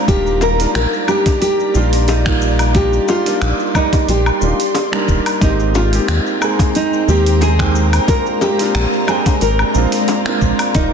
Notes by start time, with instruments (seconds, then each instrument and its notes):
Already playing: ambient pad D5 A#5
0.07 analog synth bass D#1, grand piano G3 A#3 D4 D#4 F4, ambient pad G4, nylon-string guitar G4, kick, open hi-hat, shaker
0.26 shaker
0.41 nylon-string guitar A#4, high bongo, shaker
0.58 grand piano G3 A#3 D4 D#4 F4, open hi-hat, shaker
0.75 analog synth bass A#1, nylon-string guitar A#4, finger snap, open hi-hat, shaker
0.93 shaker
1.07 grand piano G3 A#3 D4 D#4 G4, nylon-string guitar G4, low woodblock, shaker
1.26 kick, open hi-hat, high bongo, shaker
1.42 nylon-string guitar G4, open hi-hat, shaker
1.60 shaker
1.74 analog synth bass A#1, grand piano G3 A#3 D4 D#4 F4, nylon-string guitar F4, shaker
1.93 open hi-hat, shaker
2.08 nylon-string guitar D#4, open hi-hat, high bongo, shaker
2.25 grand piano G3 A#3 D#4 F4 D5, finger snap, kick, shaker
2.42 shaker
2.59 open hi-hat, low woodblock, shaker
2.73 grand piano G3 A#3 D4 D#4 F4, nylon-string guitar G4, ambient pad C6, kick, open hi-hat, shaker
2.93 shaker
3.08 nylon-string guitar F4, high bongo, shaker
3.25 grand piano G3 A#3 D4 D#4 F4, open hi-hat, shaker
3.42 analog synth bass A#1, finger snap, open hi-hat, shaker
3.60 shaker
3.73 grand piano G3 A#3 D#4 G4 D5, nylon-string guitar D#4, kick, low woodblock, shaker
3.93 kick, open hi-hat, high bongo, shaker
4.08 analog synth bass A#1, nylon-string guitar G4, open hi-hat, shaker
4.26 low woodblock, shaker
4.40 analog synth bass D#1, grand piano G3 A#3 D4 D#4 F4, shaker
4.60 open hi-hat, shaker
4.75 open hi-hat, high bongo, shaker
4.91 grand piano G3 A#3 D4 D#4 A#4, finger snap, shaker
5.08 analog synth bass D#1, kick, shaker
5.26 open hi-hat, low woodblock, shaker
5.40 analog synth bass G#1, grand piano G#3 A#3 C4 D#4 G4, ambient pad G#3 C5 G5 A#5, nylon-string guitar D#4, kick, open hi-hat, shaker
5.60 shaker
5.75 nylon-string guitar F4, high bongo, shaker
5.92 grand piano G#3 A#3 C4 D#4 G4, open hi-hat, shaker
6.08 analog synth bass D#2, finger snap, open hi-hat, shaker
6.27 shaker
6.40 grand piano G#3 A#3 C4 D#4 G#4, low woodblock, shaker
6.59 kick, open hi-hat, high bongo, shaker
6.75 nylon-string guitar D#4, open hi-hat, shaker
6.93 shaker
7.07 analog synth bass D#2, grand piano G#3 A#3 C4 D#4 G4, nylon-string guitar G4, shaker
7.26 open hi-hat, shaker
7.41 nylon-string guitar G#4, open hi-hat, high bongo, shaker
7.58 grand piano G#3 A#3 C4 D#4 G5, finger snap, kick, shaker
7.75 shaker
7.93 open hi-hat, low woodblock, shaker
8.07 grand piano G#3 A#3 C4 D4 F4, ambient pad G#3 D5, nylon-string guitar A#4, kick, open hi-hat, shaker
8.26 shaker
8.41 nylon-string guitar G4, high bongo, shaker
8.58 grand piano G#3 A#3 C4 D4 F4, open hi-hat, shaker
8.75 analog synth bass A#1, finger snap, open hi-hat, shaker
8.93 shaker
9.07 grand piano G#3 A#3 C4 D4 G5, nylon-string guitar G#4, low woodblock, shaker
9.26 kick, open hi-hat, high bongo, shaker
9.41 analog synth bass G#1, nylon-string guitar A#4, open hi-hat, shaker
9.59 low woodblock, shaker
9.74 analog synth bass A#1, grand piano G#3 A#3 C4 D4 F4, shaker
9.92 open hi-hat, shaker
10.08 open hi-hat, high bongo, shaker
10.25 grand piano G#3 A#3 C4 D4 F4, finger snap, shaker
10.41 analog synth bass A#1, kick, shaker
10.59 open hi-hat, low woodblock, shaker
10.74 analog synth bass D#1, grand piano G3 A#3 D#4 F4 D5, nylon-string guitar D#4, ambient pad G4, kick, open hi-hat, shaker